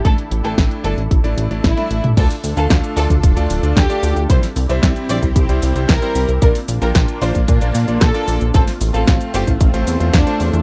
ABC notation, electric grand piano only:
X:1
M:4/4
L:1/16
Q:1/4=113
K:Dm
V:1 name="Electric grand piano"
[A,DEd] z2 [A,DEg]3 [A,DEd] z2 [A,DEd]2 [A,DEd] z [A,DEd]2 z | [A,DFd] z2 [A,DFf]3 [A,DFd] z2 [A,DFd]2 [A,DFd] z [A,DFd]2 z | [G,CEc] z2 [G,CEe]3 [G,CEc] z2 [G,CEc]2 [G,CEc] z [G,CEc]2 z | [B,DFd] z2 [B,DFg]3 [B,DFd] z2 [B,DFd]2 [B,DFd] z [B,DFd]2 z |
[A,CFc] z2 [A,CFf]3 [A,CFc] z2 [A,CFc]2 [A,CFc] z [A,CFc]2 z |]